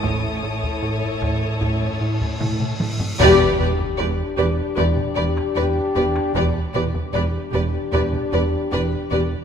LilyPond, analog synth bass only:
\new Staff \with { instrumentName = "Analog synth bass" } { \clef bass \time 4/4 \key a \minor \tempo 4 = 76 a,8 a,8 a,8 a,8 a,8 a,8 a,8 a,8 | e,8 e,8 e,8 e,8 e,8 e,8 e,8 e,8 | e,8 e,8 e,8 e,8 e,8 e,8 e,8 e,8 | }